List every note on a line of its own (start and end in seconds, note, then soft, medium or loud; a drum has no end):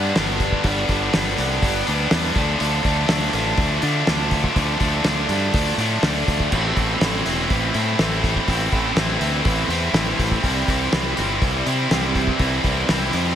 0.00 0.11 G2 medium
0.00 0.14 G2 medium
0.00 0.15 G3 medium
0.00 0.16 B3 medium
0.00 0.17 D4 medium
0.14 0.55 G1 medium
0.14 0.62 G2 medium
0.14 0.64 D3 medium
0.14 0.65 G3 medium
0.14 0.66 B3 medium
0.14 0.67 D4 medium
0.14 snare loud
0.14 open hi-hat medium
0.40 kick medium
0.40 open hi-hat medium
0.52 kick medium
0.64 0.84 G1 medium
0.64 1.13 G2 medium
0.64 1.12 D3 medium
0.64 0.91 G3 medium
0.64 0.90 B3 medium
0.64 kick medium
0.64 open hi-hat medium
0.68 0.88 D4 medium
0.89 1.08 G1 medium
0.89 1.13 G3 medium
0.89 1.14 B3 medium
0.89 1.16 D4 medium
0.89 kick medium
0.89 open hi-hat medium
1.13 1.34 G1 medium
1.13 1.62 D3 medium
1.13 1.40 G3 medium
1.13 1.39 B3 medium
1.13 1.37 D4 medium
1.13 snare loud
1.13 open hi-hat medium
1.37 1.58 C2 medium
1.37 1.89 G3 medium
1.37 1.87 B3 medium
1.37 1.86 D4 medium
1.37 open hi-hat medium
1.62 1.82 G1 medium
1.62 kick loud
1.62 open hi-hat medium
1.87 2.07 D2 medium
1.87 2.12 G3 medium
1.87 2.12 B3 medium
1.87 2.14 D4 medium
1.87 open hi-hat medium
2.11 2.31 E2 medium
2.11 2.34 G2 loud
2.11 2.35 D3 medium
2.11 2.35 G3 medium
2.11 2.36 B3 loud
2.11 2.34 D4 loud
2.11 snare loud
2.11 open hi-hat medium
2.35 2.55 D2 medium
2.35 2.58 D3 medium
2.35 2.60 F3 medium
2.35 2.60 A3 medium
2.35 2.62 D4 medium
2.35 kick loud
2.35 open hi-hat medium
2.58 2.80 D2 medium
2.58 3.08 D3 medium
2.58 2.87 F3 medium
2.58 2.85 A3 medium
2.58 2.83 D4 medium
2.58 open hi-hat medium
2.84 3.04 D2 medium
2.84 3.09 F3 medium
2.84 3.10 A3 medium
2.84 3.11 D4 medium
2.84 kick medium
2.84 open hi-hat medium
3.08 3.28 D2 medium
3.08 4.06 D3 medium
3.08 3.37 F3 medium
3.08 3.34 A3 medium
3.08 3.33 D4 medium
3.08 snare loud
3.08 open hi-hat medium
3.33 3.53 A1 medium
3.33 3.84 F3 medium
3.33 3.83 A3 medium
3.33 3.80 D4 medium
3.33 open hi-hat medium
3.57 3.77 D2 medium
3.57 kick loud
3.57 open hi-hat medium
3.82 4.02 D3 medium
3.82 4.06 F3 medium
3.82 4.08 A3 medium
3.82 4.08 D4 medium
3.82 open hi-hat medium
4.06 4.46 D2 medium
4.06 4.54 D3 medium
4.06 4.55 F3 medium
4.06 4.58 A3 medium
4.06 4.57 D4 loud
4.06 snare loud
4.06 open hi-hat medium
4.31 kick medium
4.31 open hi-hat medium
4.44 kick medium
4.55 4.75 D2 loud
4.55 5.04 D3 medium
4.55 4.82 F3 medium
4.55 4.82 A3 medium
4.55 4.79 D4 loud
4.55 kick loud
4.55 open hi-hat medium
4.80 5.00 D2 medium
4.80 5.05 F3 medium
4.80 5.07 A3 medium
4.80 5.08 D4 medium
4.80 kick medium
4.80 open hi-hat medium
5.04 5.25 D2 medium
5.04 5.54 D3 medium
5.04 5.31 F3 medium
5.04 5.31 A3 medium
5.04 snare loud
5.04 open hi-hat medium
5.09 5.28 D4 medium
5.29 5.48 G2 medium
5.29 5.80 F3 medium
5.29 5.80 A3 medium
5.29 5.78 D4 medium
5.29 open hi-hat medium
5.54 5.73 D2 medium
5.54 kick loud
5.54 open hi-hat medium
5.78 5.97 A2 medium
5.78 6.05 A3 medium
5.78 6.05 D4 medium
5.78 open hi-hat medium
5.82 6.03 F3 medium
6.03 6.22 D2 medium
6.03 6.51 D3 medium
6.03 6.51 F3 medium
6.03 6.53 A3 medium
6.03 6.52 D4 medium
6.03 snare loud
6.03 open hi-hat medium
6.28 6.47 D2 medium
6.28 kick medium
6.28 open hi-hat medium
6.40 kick medium
6.51 6.72 A1 medium
6.51 7.98 A2 medium
6.51 7.01 E3 medium
6.51 6.79 A3 medium
6.51 6.77 C4 medium
6.51 6.75 E4 medium
6.51 kick loud
6.51 crash loud
6.76 6.96 A1 medium
6.76 7.02 A3 medium
6.76 7.03 C4 medium
6.76 7.05 E4 medium
6.76 kick medium
6.76 open hi-hat medium
7.01 7.20 A1 medium
7.01 7.99 E3 medium
7.01 7.29 A3 medium
7.01 7.27 C4 medium
7.01 7.25 E4 medium
7.01 snare loud
7.01 open hi-hat medium
7.26 7.45 E1 medium
7.26 7.77 A3 medium
7.26 7.76 C4 medium
7.26 7.74 E4 medium
7.26 open hi-hat medium
7.50 7.70 A1 medium
7.50 kick loud
7.50 open hi-hat medium
7.74 7.94 A2 medium
7.74 7.99 A3 medium
7.74 8.01 C4 medium
7.74 8.02 E4 medium
7.74 open hi-hat medium
7.99 8.38 A1 medium
7.99 8.46 A2 medium
7.99 8.48 E3 medium
7.99 8.48 A3 medium
7.99 8.50 C4 medium
7.99 8.50 E4 medium
7.99 snare loud
7.99 open hi-hat medium
8.24 kick medium
8.24 open hi-hat soft
8.36 kick medium
8.47 8.68 A1 medium
8.47 8.97 A2 medium
8.47 8.96 E3 medium
8.47 8.74 A3 medium
8.47 8.74 C4 loud
8.47 8.72 E4 medium
8.47 kick medium
8.47 open hi-hat medium
8.72 8.92 A1 medium
8.72 8.96 A3 medium
8.72 8.98 C4 medium
8.72 8.99 E4 medium
8.72 kick medium
8.72 open hi-hat medium
8.96 9.16 A1 medium
8.96 9.94 E3 medium
8.96 9.21 A3 medium
8.96 9.21 C4 medium
8.96 snare loud
8.96 open hi-hat medium
9.00 9.19 E4 medium
9.19 9.40 D2 medium
9.19 9.71 A3 medium
9.19 9.70 C4 medium
9.19 9.68 E4 medium
9.19 open hi-hat medium
9.45 9.65 A1 medium
9.45 kick loud
9.45 open hi-hat medium
9.68 9.88 E2 medium
9.68 9.96 C4 medium
9.68 9.96 E4 medium
9.68 open hi-hat medium
9.72 9.94 A3 medium
9.93 10.13 A1 medium
9.93 10.42 A2 medium
9.93 10.42 E3 loud
9.93 10.42 A3 medium
9.93 10.44 C4 loud
9.93 10.45 E4 loud
9.93 snare loud
9.93 open hi-hat medium
10.19 10.38 A1 medium
10.19 kick medium
10.19 open hi-hat medium
10.31 kick medium
10.42 10.63 C2 loud
10.42 11.90 C3 medium
10.42 10.91 E3 medium
10.42 10.70 G3 loud
10.42 10.69 C4 loud
10.42 10.67 E4 loud
10.42 kick loud
10.42 open hi-hat medium
10.67 10.87 C2 medium
10.67 10.93 G3 medium
10.67 10.94 C4 medium
10.67 10.95 E4 medium
10.67 kick medium
10.67 open hi-hat medium
10.92 11.12 C2 medium
10.92 11.91 E3 medium
10.92 11.20 G3 medium
10.92 11.18 C4 medium
10.92 11.16 E4 medium
10.92 snare loud
10.92 open hi-hat medium
11.16 11.37 G1 loud
11.16 11.69 G3 medium
11.16 11.67 C4 medium
11.16 11.65 E4 medium
11.16 open hi-hat medium
11.42 11.61 C2 medium
11.42 kick loud
11.42 open hi-hat medium
11.66 11.86 C3 medium
11.66 11.92 G3 medium
11.66 11.91 C4 medium
11.66 11.92 E4 medium
11.66 open hi-hat medium
11.90 12.30 C2 medium
11.90 12.37 C3 loud
11.90 12.38 E3 medium
11.90 12.39 G3 medium
11.90 12.40 C4 loud
11.90 12.41 E4 medium
11.90 snare loud
11.90 open hi-hat medium
12.15 kick medium
12.15 open hi-hat medium
12.27 kick medium
12.39 12.59 C2 loud
12.39 12.88 C3 medium
12.39 12.87 E3 medium
12.39 12.66 G3 medium
12.39 12.64 C4 medium
12.39 12.62 E4 medium
12.39 kick medium
12.39 open hi-hat medium
12.64 12.84 C2 medium
12.64 12.88 G3 medium
12.64 12.89 C4 medium
12.64 12.90 E4 medium
12.64 kick medium
12.64 open hi-hat medium
12.88 13.09 C2 medium
12.88 13.35 E3 medium
12.88 13.14 G3 medium
12.88 13.13 C4 medium
12.88 13.11 E4 medium
12.88 snare loud
12.88 open hi-hat medium
13.12 13.33 F2 medium
13.12 13.35 G3 medium
13.12 13.35 C4 medium
13.12 13.35 E4 medium
13.12 open hi-hat medium